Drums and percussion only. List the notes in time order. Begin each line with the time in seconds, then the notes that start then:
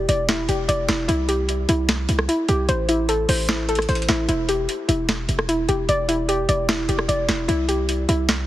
0.09 closed hi-hat
0.29 snare, closed hi-hat
0.49 closed hi-hat
0.69 closed hi-hat
0.89 snare, closed hi-hat
1.09 closed hi-hat
1.29 closed hi-hat
1.49 closed hi-hat
1.69 closed hi-hat
1.89 snare, closed hi-hat
2.09 closed hi-hat
2.19 cross-stick
2.29 closed hi-hat
2.49 closed hi-hat
2.69 closed hi-hat
2.89 closed hi-hat
3.09 closed hi-hat
3.29 open hi-hat
3.49 snare, closed hi-hat
3.69 closed hi-hat
3.75 cross-stick, closed hi-hat
3.82 closed hi-hat
3.89 closed hi-hat
3.95 closed hi-hat
4.02 closed hi-hat
4.09 snare, closed hi-hat
4.29 closed hi-hat
4.49 closed hi-hat
4.69 closed hi-hat
4.89 closed hi-hat
5.09 snare, closed hi-hat
5.29 closed hi-hat
5.39 cross-stick
5.49 closed hi-hat
5.69 closed hi-hat
5.89 closed hi-hat
6.09 closed hi-hat
6.29 closed hi-hat
6.49 closed hi-hat
6.69 snare, closed hi-hat
6.89 closed hi-hat
6.99 cross-stick
7.09 closed hi-hat
7.29 snare, closed hi-hat
7.49 closed hi-hat
7.69 closed hi-hat
7.89 closed hi-hat
8.09 closed hi-hat
8.29 snare, closed hi-hat